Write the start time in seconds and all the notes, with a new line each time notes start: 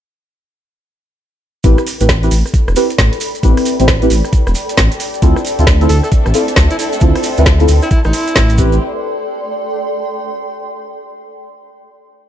1.64 A1 C4 E4 G4 A4 B4, kick, closed hi-hat, maracas
1.78 cross-stick, maracas
1.87 open hi-hat, maracas
2.01 A1 C4 E4 G4 B4, closed hi-hat, maracas
2.05 D5 B5, kick, snare
2.09 maracas
2.23 C4 E4 G4 B4, closed hi-hat, maracas
2.31 A1, open hi-hat, maracas
2.41 G5
2.46 cross-stick, maracas
2.54 kick, closed hi-hat, maracas
2.68 E1, cross-stick, maracas
2.76 C4 E4 G4 B4, open hi-hat, maracas
2.90 closed hi-hat, maracas
2.98 A1, kick, snare, maracas
3.13 closed hi-hat, maracas
3.20 open hi-hat, maracas
3.35 closed hi-hat, maracas
3.43 A1 C4 E4 G4 B4, kick, closed hi-hat, maracas
3.57 cross-stick, open hi-hat, maracas
3.65 open hi-hat, maracas
3.80 A1 C4 E4 G4 C5, closed hi-hat, maracas
3.88 kick, snare, maracas
4.02 C4 E4 G4 B4, closed hi-hat, maracas
4.10 A1, open hi-hat, maracas
4.24 cross-stick, maracas
4.33 kick, closed hi-hat, maracas
4.47 E1, cross-stick, maracas
4.55 open hi-hat, maracas
4.69 closed hi-hat, maracas
4.77 A1, kick, snare, maracas
4.92 closed hi-hat, maracas
5.00 open hi-hat, maracas
5.14 closed hi-hat, maracas
5.22 D2 C4 D4 E4 F4 A4 E5, kick, closed hi-hat, maracas
5.36 cross-stick, maracas
5.45 open hi-hat, maracas
5.59 D2 C4 E4 F4 A4, closed hi-hat, maracas
5.67 kick, snare, maracas
5.81 C4 E4 F4 A4, closed hi-hat, maracas
5.89 D2 A4, open hi-hat, maracas
6.03 A4, cross-stick, maracas
6.12 kick, closed hi-hat, maracas
6.26 A1, cross-stick, maracas
6.34 C4 E4 F4 A4, open hi-hat, maracas
6.48 C6, closed hi-hat, maracas
6.56 D2, kick, snare, maracas
6.71 E4, closed hi-hat, maracas
6.79 E4, open hi-hat, maracas
6.93 closed hi-hat, maracas
7.00 D2 C4 E4 F4 A4, kick, closed hi-hat, maracas
7.15 cross-stick, open hi-hat, maracas
7.23 open hi-hat, maracas
7.37 D2 C4 E4 F4 B4, closed hi-hat, maracas
7.46 kick, snare, maracas
7.60 C4 E4 F4 A4, closed hi-hat, maracas
7.68 D2, open hi-hat, maracas
7.82 E4, cross-stick, maracas
7.91 E4, kick, closed hi-hat, maracas
8.04 A1 E4, cross-stick, maracas
8.13 open hi-hat, maracas
8.28 closed hi-hat, maracas
8.36 A1, kick, snare, maracas
8.49 closed hi-hat, maracas
8.58 A1 C4 E4 G4 B4, kick, maracas
8.72 maracas